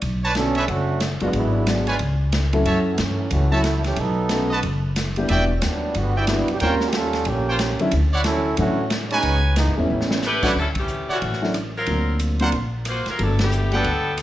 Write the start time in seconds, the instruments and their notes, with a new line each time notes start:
0.02 upright bass B1, ride
0.23 trumpet section D4 B4 C#5 A5
0.35 upright piano D3 A3 B3 C#4 F#4, trombone section F#3 C#4 D4 A4, snare, hi-hat pedal, ride
0.55 trumpet section D4 B4 C#5 E5, ride
0.68 upright bass F#1, trombone section D3 A3 C#4 F#4, ride
1.00 snare, hi-hat pedal, ride
1.20 upright bass F#1, upright piano F#3 G#3 B3 D4 F#4, trombone section G#3 B3 D4 F4, ride
1.33 upright bass G#1, trombone section G#3 B3 D4 E4, ride
1.67 upright piano F#3 G#3 B3 D4 F#4, trombone section F#3 G#3 B3 D4, snare, hi-hat pedal, ride
1.87 trumpet section F4 B4 C#5 G#5, ride
1.99 upright bass C#2, ride
2.32 snare, hi-hat pedal, ride
2.53 upright piano F#3 A3 C#4 E4 A4, ride
2.65 upright bass F#2, trumpet section F#4 C#5 E5 A5, ride
2.93 trombone section B3
2.98 upright bass G2, trombone section E3 F#3 A3 C#4, snare, hi-hat pedal, ride
3.31 upright bass C#2, trombone section E3 A3 C#4 F#4, ride
3.52 upright piano F#3 A3 C#4 E4 F#4, trombone section F#3 A3 C#4 E4, trumpet section F#4 C#5 E5 A5
3.64 snare, hi-hat pedal, ride
3.84 trombone section E3 A3 C#4 G4, snare, ride
3.96 upright bass B1, trombone section F#3 B3 D#4 A4, ride
4.29 upright piano A3 B3 C#4 D#4 F#4, snare, hi-hat pedal, ride
4.50 trumpet section F#4 B4 D#5 A5
4.63 upright bass F#1, ride
4.96 snare, hi-hat pedal, ride
5.16 upright piano G3 B3 D4 E4 G4, ride
5.28 upright bass E1, upright piano G3 B3 D4 E4 F#4, trumpet section F#4 D5 E5 G5, ride
5.58 trombone section C#4
5.62 upright bass D#2, trombone section F#3 G3 B3 D4, snare, hi-hat pedal, ride
5.94 upright bass G1, trombone section D3 G3 B3 F#4, ride
6.16 trombone section G3 B3 D4 E4, trumpet section F#4 D5 E5 G5
6.27 upright piano G3 B3 D4 E4 F#4, snare, hi-hat pedal, ride
6.48 trombone section D3 F#3 B3 G4, muted upright bass stroke, ride
6.60 upright bass D#2, trombone section G3 C#4 F4 A#4, upright piano G3 A#3 C4 C#4 F4, trumpet section F4 C5 C#5 G5, ride
6.80 snare
6.88 trombone section G4
6.92 trombone section G3 C#4 F4 A4, snare, hi-hat pedal, ride
7.13 snare, ride
7.25 upright bass A#1, trombone section F3 A#3 C#4 G4, ride
7.47 trumpet section F4 C5 C#5 G5
7.59 snare, hi-hat pedal, ride
7.79 upright piano D3 F#3 A3 C#4 E4, muted upright bass stroke, ride
7.91 upright bass D2, ride
8.13 trumpet section E4 C#5 D5 F#5
8.24 trombone section F#3 C#4 E4 A4, snare, hi-hat pedal, ride
8.57 upright bass A2, upright piano D3 F#3 A3 C#4 E4, trombone section E3 A3 C#4 F#4, ride
8.90 snare, hi-hat pedal, ride
9.09 trombone section G#3 B3 C#4 D#4, trumpet section F#4 B4 C#5 G#5, ride
9.23 upright bass C#2, ride
9.55 trombone section E3 G#3 B3 D#4, snare, hi-hat pedal, ride
9.68 upright bass G#2
9.75 upright bass E2, trombone section E3 G3 A3 C#4, upright piano G3 A3 B3 C#4 E4
9.90 upright bass A1
10.01 snare
10.11 snare
10.22 saxophone section A3 E4 G4 B4, snare, hi-hat pedal
10.43 upright piano F#3 A3 C#4 D4 F#4, trumpet section E4 C#5 D5 F#5, kick, crash
10.56 upright bass D2, saxophone section F#3 C#4 E4 A4
10.75 saxophone section E3 A3 C#4 G4, kick, ride
10.88 hi-hat pedal
11.09 saxophone section A3 F#4, trumpet section E4 C#5 D5 F#5, muted upright bass stroke
11.13 saxophone section E3 C#4
11.22 upright bass A1, ride
11.33 snare
11.42 upright piano F#3 A3 C#4 D4 E4, snare
11.54 cross-stick, hi-hat pedal, ride
11.77 saxophone section F#3 C4 F4 A#4
11.86 upright bass D2, upright piano F#3 A#3 C4 D4 F4, ride
12.19 hi-hat pedal, ride
12.39 upright piano F#3 A#3 C4 D4 F4, trumpet section D4 A#4 C5 F#5, ride
12.52 upright bass A#1, ride
12.85 saxophone section A#3 F4 F#4 C5, cross-stick, hi-hat pedal, ride
13.06 saxophone section F#3 C4, muted upright bass stroke, snare, ride
13.10 saxophone section F4 A#4
13.19 upright bass G1, saxophone section F#3 B3 D4, upright piano G3 A3 B3 D4 F#4, ride
13.23 saxophone section A4
13.39 saxophone section D3 A3 B3 G4, snare, ride
13.51 hi-hat pedal
13.72 saxophone section F#3 B3 D4 A4, upright piano G3 A3 B3 D4 F#4, trumpet section A4 B4 F#5 G5, ride
13.84 upright bass D2, ride
14.17 cross-stick, hi-hat pedal, ride